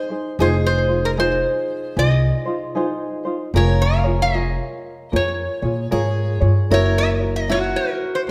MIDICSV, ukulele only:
0, 0, Header, 1, 2, 480
1, 0, Start_track
1, 0, Tempo, 789474
1, 235, Time_signature, 4, 2, 24, 8
1, 5051, End_track
2, 0, Start_track
2, 0, Title_t, "Ukulele"
2, 0, Program_c, 0, 24
2, 0, Note_on_c, 0, 68, 79
2, 0, Note_on_c, 0, 72, 73
2, 61, Note_off_c, 0, 68, 0
2, 62, Note_off_c, 0, 72, 0
2, 62, Note_on_c, 0, 72, 57
2, 69, Note_on_c, 0, 68, 48
2, 72, Note_on_c, 0, 63, 45
2, 232, Note_off_c, 0, 68, 0
2, 236, Note_off_c, 0, 63, 0
2, 236, Note_off_c, 0, 72, 0
2, 239, Note_on_c, 0, 68, 69
2, 244, Note_on_c, 0, 63, 90
2, 244, Note_on_c, 0, 65, 78
2, 250, Note_on_c, 0, 72, 86
2, 528, Note_off_c, 0, 72, 0
2, 535, Note_off_c, 0, 65, 0
2, 535, Note_on_c, 0, 72, 48
2, 539, Note_off_c, 0, 68, 0
2, 541, Note_off_c, 0, 63, 0
2, 542, Note_on_c, 0, 65, 48
2, 551, Note_on_c, 0, 63, 41
2, 711, Note_off_c, 0, 63, 0
2, 714, Note_off_c, 0, 65, 0
2, 714, Note_off_c, 0, 72, 0
2, 714, Note_on_c, 0, 68, 63
2, 718, Note_on_c, 0, 63, 71
2, 721, Note_on_c, 0, 65, 82
2, 721, Note_on_c, 0, 72, 76
2, 1191, Note_off_c, 0, 68, 0
2, 1194, Note_off_c, 0, 63, 0
2, 1194, Note_on_c, 0, 68, 59
2, 1199, Note_off_c, 0, 72, 0
2, 1200, Note_off_c, 0, 65, 0
2, 1202, Note_on_c, 0, 63, 60
2, 1203, Note_on_c, 0, 65, 60
2, 1207, Note_on_c, 0, 72, 67
2, 1485, Note_off_c, 0, 72, 0
2, 1492, Note_on_c, 0, 72, 53
2, 1494, Note_off_c, 0, 65, 0
2, 1497, Note_off_c, 0, 68, 0
2, 1498, Note_off_c, 0, 63, 0
2, 1501, Note_on_c, 0, 65, 50
2, 1505, Note_on_c, 0, 63, 44
2, 1668, Note_off_c, 0, 63, 0
2, 1672, Note_on_c, 0, 68, 83
2, 1674, Note_off_c, 0, 72, 0
2, 1675, Note_off_c, 0, 65, 0
2, 1675, Note_on_c, 0, 63, 85
2, 1682, Note_on_c, 0, 65, 85
2, 1682, Note_on_c, 0, 72, 87
2, 1967, Note_off_c, 0, 72, 0
2, 1974, Note_on_c, 0, 72, 56
2, 1976, Note_off_c, 0, 65, 0
2, 1976, Note_off_c, 0, 68, 0
2, 1978, Note_off_c, 0, 63, 0
2, 1983, Note_on_c, 0, 65, 47
2, 1986, Note_on_c, 0, 63, 47
2, 2152, Note_off_c, 0, 65, 0
2, 2155, Note_off_c, 0, 72, 0
2, 2156, Note_on_c, 0, 70, 78
2, 2157, Note_off_c, 0, 63, 0
2, 2159, Note_on_c, 0, 65, 80
2, 2162, Note_on_c, 0, 68, 78
2, 2164, Note_on_c, 0, 73, 76
2, 2450, Note_off_c, 0, 73, 0
2, 2457, Note_on_c, 0, 73, 62
2, 2458, Note_off_c, 0, 68, 0
2, 2458, Note_off_c, 0, 70, 0
2, 2460, Note_off_c, 0, 65, 0
2, 2465, Note_on_c, 0, 68, 47
2, 2471, Note_on_c, 0, 65, 46
2, 2633, Note_off_c, 0, 65, 0
2, 2637, Note_off_c, 0, 73, 0
2, 2639, Note_off_c, 0, 68, 0
2, 2639, Note_on_c, 0, 70, 64
2, 2640, Note_on_c, 0, 65, 69
2, 2646, Note_on_c, 0, 68, 74
2, 2646, Note_on_c, 0, 73, 75
2, 3110, Note_off_c, 0, 65, 0
2, 3110, Note_off_c, 0, 70, 0
2, 3113, Note_off_c, 0, 68, 0
2, 3113, Note_on_c, 0, 70, 61
2, 3117, Note_on_c, 0, 65, 62
2, 3119, Note_off_c, 0, 73, 0
2, 3120, Note_on_c, 0, 68, 63
2, 3121, Note_on_c, 0, 73, 63
2, 3409, Note_off_c, 0, 73, 0
2, 3415, Note_off_c, 0, 68, 0
2, 3416, Note_on_c, 0, 73, 57
2, 3417, Note_off_c, 0, 70, 0
2, 3419, Note_off_c, 0, 65, 0
2, 3422, Note_on_c, 0, 68, 53
2, 3429, Note_on_c, 0, 65, 47
2, 3589, Note_off_c, 0, 65, 0
2, 3590, Note_off_c, 0, 68, 0
2, 3593, Note_on_c, 0, 70, 76
2, 3596, Note_on_c, 0, 65, 81
2, 3597, Note_off_c, 0, 73, 0
2, 3597, Note_on_c, 0, 68, 89
2, 3603, Note_on_c, 0, 73, 89
2, 3886, Note_off_c, 0, 73, 0
2, 3892, Note_off_c, 0, 68, 0
2, 3893, Note_on_c, 0, 73, 57
2, 3897, Note_off_c, 0, 65, 0
2, 3897, Note_off_c, 0, 70, 0
2, 3900, Note_on_c, 0, 68, 43
2, 3904, Note_on_c, 0, 65, 43
2, 4075, Note_off_c, 0, 73, 0
2, 4077, Note_on_c, 0, 70, 70
2, 4078, Note_off_c, 0, 68, 0
2, 4080, Note_off_c, 0, 65, 0
2, 4081, Note_on_c, 0, 66, 82
2, 4083, Note_on_c, 0, 64, 84
2, 4087, Note_on_c, 0, 73, 89
2, 4369, Note_off_c, 0, 73, 0
2, 4373, Note_off_c, 0, 70, 0
2, 4374, Note_off_c, 0, 64, 0
2, 4376, Note_on_c, 0, 73, 51
2, 4379, Note_off_c, 0, 66, 0
2, 4382, Note_on_c, 0, 64, 49
2, 4387, Note_on_c, 0, 66, 44
2, 4548, Note_off_c, 0, 64, 0
2, 4550, Note_off_c, 0, 66, 0
2, 4550, Note_off_c, 0, 73, 0
2, 4553, Note_on_c, 0, 70, 70
2, 4555, Note_on_c, 0, 64, 77
2, 4557, Note_on_c, 0, 66, 64
2, 4557, Note_on_c, 0, 73, 69
2, 5030, Note_off_c, 0, 70, 0
2, 5032, Note_off_c, 0, 66, 0
2, 5035, Note_off_c, 0, 73, 0
2, 5036, Note_off_c, 0, 64, 0
2, 5051, End_track
0, 0, End_of_file